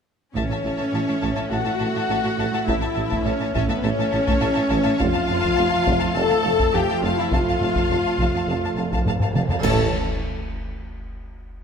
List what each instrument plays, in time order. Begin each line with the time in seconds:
0.35 tuba A1, double bass section A1, cello section A2, timpani A2, trombone section E3 A3, viola section C#4, french horn section C#4, violin section C#5 E5 A5, taiko
0.50 cello section A2, violin section E5 A5
0.64 tuba A1, double bass section A1, cello section A2, violin section E5 A5
0.77 cello section A2, violin section E5 A5
0.93 tuba A1, double bass section A1, cello section A2, violin section E5 A5
1.08 cello section A2, violin section E5 A5
1.22 tuba A1, double bass section A1, cello section A2, violin section E5 A5, taiko
1.36 cello section A2, violin section E5 A5
1.51 tuba A1, double bass section A1, cello section A2, viola section F#4, french horn section F#4, violin section E5 F#5 A5
1.64 cello section A2, violin section E5 A5
1.79 tuba A1, double bass section A1, cello section A2, violin section E5 A5
1.94 cello section A2, violin section E5 A5
2.09 tuba A1, double bass section A1, cello section A2, violin section E5 A5
2.24 cello section A2, violin section E5 A5
2.38 tuba A1, double bass section A1, cello section A2, violin section E5 A5
2.53 cello section A2, violin section E5 A5
2.66 tuba A1, double bass section A1, cello section A2, viola section E4, french horn section E4, violin section E5 A5, taiko
2.81 cello section A2, violin section E5 A5
2.94 tuba A1, double bass section A1, cello section A2, violin section E5 A5
3.09 cello section A2, violin section E5 A5, taiko
3.24 tuba A1, double bass section A1, cello section A2, viola section C#4, violin section C#5 E5 A5
3.29 french horn section C#4
3.40 cello section A2, violin section E5 A5
3.53 tuba A1, double bass section A1, cello section A2, viola section C#4, french horn section C#4, violin section C#5 E5 A5, taiko
3.68 cello section A2, viola section B3, violin section B4 E5 A5
3.73 french horn section B3
3.83 double bass section A1, tuba A1, cello section A2, viola section C#4, violin section C#5 E5 A5
3.87 french horn section C#4
3.98 cello section A2, violin section E5 A5
4.12 double bass section A1, tuba A1, cello section A2, violin section E5 A5
4.26 cello section A2, violin section E5 A5, taiko
4.40 double bass section A1, tuba A1, cello section A2, violin section E5 A5
4.53 cello section A2, violin section E5 A5
4.69 double bass section A1, tuba A1, cello section A2, violin section E5 A5
4.83 cello section A2, violin section E5 A5
4.98 tuba F1, double bass section F1, cello section F2, trombone section F3 A3, viola section F4, french horn section F4, violin section F5 A5, taiko
5.13 cello section F2, violin section F5 A5
5.27 double bass section F1, tuba F1, cello section F2, violin section F5 A5
5.40 cello section F2, violin section F5 A5, taiko
5.55 double bass section F1, tuba F1, cello section F2, violin section F5 A5
5.70 violin section F5 A5
5.74 cello section F2
5.82 tuba F1, violin section F5 A5
5.87 double bass section F1, cello section F2, taiko
5.99 violin section F5 A5
6.03 cello section F2
6.15 tuba F1, double bass section F1, cello section F2, french horn section A4, viola section A4, violin section F5 A5
6.29 cello section F2, violin section F5 A5
6.43 tuba F1, double bass section F1, cello section F2, violin section F5 A5
6.58 cello section F2, violin section F5 A5, taiko
6.73 tuba F1, double bass section F1, cello section F2, viola section G4, french horn section G4, violin section F5 G5 A5
6.88 cello section F2, violin section F5 A5
7.01 tuba F1, double bass section F1, cello section F2, viola section F4, french horn section F4, violin section F5 A5
7.17 cello section F2, viola section E4, french horn section E4, violin section E5 F5 A5
7.30 tuba F1, double bass section F1, cello section F2, viola section F4, violin section F5 A5, taiko
7.34 french horn section F4
7.47 cello section F2, violin section F5 A5, taiko low-mid
7.61 tuba F1, double bass section F1, cello section F2, violin section F5 A5, taiko low-mid
7.75 cello section F2, violin section F5 A5, taiko
7.89 double bass section F1, tuba F1, cello section F2, violin section F5 A5, taiko low-mid
8.05 cello section F2, violin section F5 A5
8.18 double bass section F1, tuba F1, cello section F2, violin section F5 A5, taiko
8.35 cello section F2, violin section F5 A5
8.47 tuba F1, double bass section F1, cello section F2, violin section F5 A5
8.64 cello section F2, violin section F5 A5
8.76 tuba F1, double bass section F1, cello section F2, violin section F5 A5
8.91 cello section F2, violin section F5 A5, taiko
9.06 double bass section F1, tuba F1, cello section F2, violin section F5 A5, taiko low-mid
9.20 cello section F2, violin section F5 A5, taiko low-mid
9.34 double bass section F1, tuba F1, cello section F2, violin section F5 A5, taiko mid
9.49 cello section F2, violin section F5 A5, taiko low
9.63 tuba A1, double bass section A1, timpani A2, cello section A2, trombone section E3 C#4, viola section A4, french horn section A4, violin section C#5 A5, concert bass drum, taiko low, crash